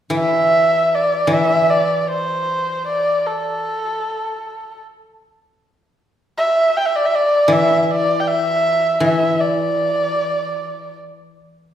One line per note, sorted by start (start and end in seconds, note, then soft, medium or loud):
0.10 1.26 E3 soft
0.15 0.96 E5 medium
0.95 1.35 D5 medium
1.27 3.64 E3 soft
1.33 1.72 E5 medium
1.70 2.01 D5 medium
2.01 2.10 D5 soft
2.08 2.87 C5 medium
2.87 3.28 D5 medium
3.26 4.82 A4 medium
6.38 6.78 E5 medium
6.77 6.87 G5 medium
6.86 6.97 E5 medium
6.96 7.07 D5 medium
7.06 7.16 E5 medium
7.15 7.54 D5 medium
7.48 8.99 E3 soft
7.52 7.82 E5 medium
7.82 7.92 E5 medium
7.91 8.21 D5 medium
8.20 8.29 G5 medium
8.28 9.03 E5 medium
9.00 11.35 E3 soft
9.00 9.42 E5 medium
9.40 10.96 D5 medium